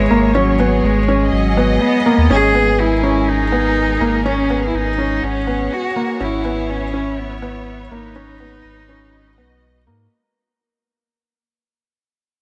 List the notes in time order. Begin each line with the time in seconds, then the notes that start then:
Already playing: G#3 E4 C#5
0.10 G#1 A#3
0.35 F#3 G#3 C#4
0.43 G#4
0.59 B3
0.84 G#1 G#3
1.08 C#4
1.23 D#5
1.32 G#1 F#3
1.57 B3
1.82 B3
2.06 A#3
2.18 D#2
2.30 G#1 C#4 G#4
2.55 B3
2.80 E4 A#4
3.03 C#4
3.28 D#4
3.52 B3
4.01 G#1 A#3
4.26 C#4
4.50 B3
4.67 E4
4.74 G#1 D#4
4.98 C#4
5.13 C#5 F#5
5.23 G#1 C#4
5.47 B3
5.73 F#4
5.96 A#3
6.20 G#1 C#4 E4
6.45 B3
6.70 C#4
6.94 C#4
7.09 B4
7.19 B3
7.42 B3
7.91 G#1 A#3 D#4
8.15 G#3 C#4
8.40 B3
8.65 G#1
8.82 F#4
8.89 C#4
9.03 D#5
9.38 B1 B3
9.87 G#2 A#3